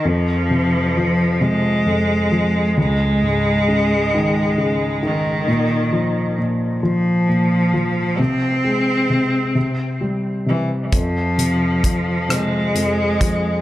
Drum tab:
HH |------|------|------|------|
SD |------|------|------|------|
BD |------|------|------|------|

HH |xxxxxx|
SD |---r--|
BD |o-o--o|